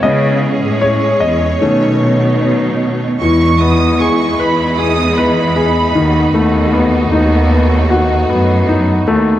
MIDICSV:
0, 0, Header, 1, 5, 480
1, 0, Start_track
1, 0, Key_signature, 4, "major"
1, 0, Tempo, 792602
1, 22, Time_signature, 4, 2, 24, 8
1, 2422, Tempo, 779221
1, 5745, End_track
2, 0, Start_track
2, 0, Title_t, "Violin section"
2, 0, Program_c, 0, 48
2, 1945, Note_on_c, 0, 85, 87
2, 2167, Note_off_c, 0, 85, 0
2, 2175, Note_on_c, 0, 87, 90
2, 2418, Note_off_c, 0, 87, 0
2, 2419, Note_on_c, 0, 85, 87
2, 2662, Note_off_c, 0, 85, 0
2, 2663, Note_on_c, 0, 83, 79
2, 2902, Note_on_c, 0, 87, 94
2, 2904, Note_off_c, 0, 83, 0
2, 3143, Note_off_c, 0, 87, 0
2, 3147, Note_on_c, 0, 83, 85
2, 4103, Note_off_c, 0, 83, 0
2, 5745, End_track
3, 0, Start_track
3, 0, Title_t, "String section"
3, 0, Program_c, 1, 48
3, 0, Note_on_c, 1, 64, 62
3, 21, Note_on_c, 1, 61, 60
3, 22, Note_on_c, 1, 68, 68
3, 22, Note_on_c, 1, 73, 77
3, 952, Note_off_c, 1, 64, 0
3, 966, Note_off_c, 1, 61, 0
3, 967, Note_off_c, 1, 68, 0
3, 975, Note_on_c, 1, 54, 72
3, 977, Note_on_c, 1, 59, 64
3, 977, Note_on_c, 1, 63, 65
3, 1926, Note_off_c, 1, 73, 0
3, 1934, Note_off_c, 1, 54, 0
3, 1935, Note_off_c, 1, 59, 0
3, 1935, Note_off_c, 1, 63, 0
3, 1940, Note_on_c, 1, 56, 57
3, 1942, Note_on_c, 1, 59, 59
3, 1942, Note_on_c, 1, 63, 64
3, 1943, Note_on_c, 1, 64, 72
3, 3603, Note_off_c, 1, 56, 0
3, 3604, Note_off_c, 1, 64, 0
3, 3623, Note_on_c, 1, 66, 77
3, 3624, Note_on_c, 1, 57, 59
3, 5745, Note_off_c, 1, 57, 0
3, 5745, Note_off_c, 1, 59, 0
3, 5745, Note_off_c, 1, 63, 0
3, 5745, Note_off_c, 1, 66, 0
3, 5745, End_track
4, 0, Start_track
4, 0, Title_t, "Grand piano"
4, 0, Program_c, 2, 0
4, 0, Control_c, 2, 64, 127
4, 17, Note_on_c, 2, 75, 88
4, 20, Note_on_c, 2, 56, 49
4, 24, Note_on_c, 2, 59, 45
4, 29, Note_on_c, 2, 61, 54
4, 31, Control_c, 2, 64, 0
4, 127, Control_c, 2, 64, 127
4, 471, Note_off_c, 2, 75, 0
4, 493, Note_on_c, 2, 73, 82
4, 729, Note_on_c, 2, 75, 72
4, 742, Note_off_c, 2, 73, 0
4, 951, Note_off_c, 2, 56, 0
4, 954, Note_off_c, 2, 59, 0
4, 956, Note_off_c, 2, 61, 0
4, 975, Note_on_c, 2, 51, 50
4, 979, Note_on_c, 2, 57, 48
4, 982, Note_on_c, 2, 61, 57
4, 983, Control_c, 2, 64, 0
4, 1075, Control_c, 2, 64, 127
4, 1433, Note_off_c, 2, 75, 0
4, 1920, Note_off_c, 2, 51, 0
4, 1922, Note_off_c, 2, 57, 0
4, 1923, Note_off_c, 2, 61, 0
4, 1948, Note_on_c, 2, 52, 56
4, 1954, Control_c, 2, 64, 0
4, 2044, Control_c, 2, 64, 127
4, 2185, Note_on_c, 2, 59, 51
4, 2425, Note_on_c, 2, 68, 53
4, 2666, Note_on_c, 2, 71, 49
4, 2897, Note_off_c, 2, 68, 0
4, 2906, Note_on_c, 2, 68, 53
4, 3120, Note_off_c, 2, 59, 0
4, 3138, Note_off_c, 2, 71, 0
4, 3147, Note_on_c, 2, 71, 53
4, 3376, Note_off_c, 2, 68, 0
4, 3385, Note_on_c, 2, 68, 53
4, 3599, Note_off_c, 2, 52, 0
4, 3609, Note_off_c, 2, 71, 0
4, 3616, Note_off_c, 2, 68, 0
4, 3625, Note_on_c, 2, 51, 65
4, 3629, Control_c, 2, 64, 0
4, 3754, Control_c, 2, 64, 127
4, 3866, Note_on_c, 2, 57, 53
4, 4104, Note_on_c, 2, 59, 53
4, 4345, Note_on_c, 2, 63, 57
4, 4576, Note_off_c, 2, 59, 0
4, 4585, Note_on_c, 2, 59, 49
4, 4799, Note_off_c, 2, 57, 0
4, 4827, Note_on_c, 2, 66, 61
4, 5060, Note_off_c, 2, 59, 0
4, 5069, Note_on_c, 2, 59, 53
4, 5279, Note_off_c, 2, 63, 0
4, 5310, Note_on_c, 2, 63, 58
4, 5519, Note_off_c, 2, 51, 0
4, 5549, Note_on_c, 2, 57, 70
4, 5745, Note_off_c, 2, 57, 0
4, 5745, Note_off_c, 2, 59, 0
4, 5745, Note_off_c, 2, 63, 0
4, 5745, Note_off_c, 2, 66, 0
4, 5745, End_track
5, 0, Start_track
5, 0, Title_t, "Cello section"
5, 0, Program_c, 3, 48
5, 24, Note_on_c, 3, 49, 96
5, 355, Note_off_c, 3, 49, 0
5, 380, Note_on_c, 3, 45, 76
5, 714, Note_off_c, 3, 45, 0
5, 738, Note_on_c, 3, 40, 82
5, 960, Note_off_c, 3, 40, 0
5, 977, Note_on_c, 3, 47, 97
5, 1921, Note_off_c, 3, 47, 0
5, 1946, Note_on_c, 3, 40, 90
5, 2640, Note_off_c, 3, 40, 0
5, 2665, Note_on_c, 3, 40, 83
5, 3598, Note_off_c, 3, 40, 0
5, 3623, Note_on_c, 3, 39, 81
5, 3846, Note_off_c, 3, 39, 0
5, 3862, Note_on_c, 3, 39, 87
5, 4317, Note_off_c, 3, 39, 0
5, 4344, Note_on_c, 3, 39, 99
5, 5038, Note_off_c, 3, 39, 0
5, 5066, Note_on_c, 3, 42, 90
5, 5519, Note_off_c, 3, 42, 0
5, 5545, Note_on_c, 3, 39, 85
5, 5745, Note_off_c, 3, 39, 0
5, 5745, End_track
0, 0, End_of_file